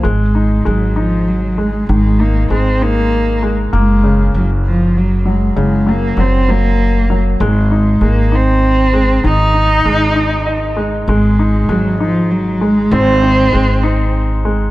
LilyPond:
<<
  \new Staff \with { instrumentName = "Cello" } { \clef bass \time 6/8 \key aes \mixolydian \tempo 4. = 65 aes4 ges8 f8 ges8 aes8 | aes8 bes8 c'8 bes4 r8 | aes4 ges8 f8 ges8 aes8 | aes8 bes8 c'8 bes4 r8 |
aes4 bes8 c'4. | ees'2~ ees'8 r8 | aes4 ges8 f8 ges8 aes8 | c'2 r4 | }
  \new Staff \with { instrumentName = "Grand piano" } { \time 6/8 \key aes \mixolydian r2. | r2. | r2. | r2. |
r2. | r2 ees''4 | r2. | r2. | }
  \new Staff \with { instrumentName = "Grand piano" } { \clef bass \time 6/8 \key aes \mixolydian aes8 ees'8 aes8 ees'4 aes8 | ees8 ees'8 aes8 ees'4 aes8 | bes8 des2 ges8 | des8 ges8 ges8 ges4 ges8 |
aes8 ees'8 aes8 ees'4 aes8 | ees8 ees'8 aes8 ees'4 aes8 | aes8 ees'8 aes8 ees'4 aes8 | c'8 ees'8 aes8 ees'4 aes8 | }
  \new Staff \with { instrumentName = "Upright bass" } { \clef bass \time 6/8 \key aes \mixolydian aes,,4 aes,,2 | aes,,4 aes,,2 | ges,,4 ges,,2 | ges,,4 ges,,2 |
aes,,4 aes,,2 | aes,,4 aes,,2 | aes,,4 aes,,2 | aes,,4 aes,,2 | }
>>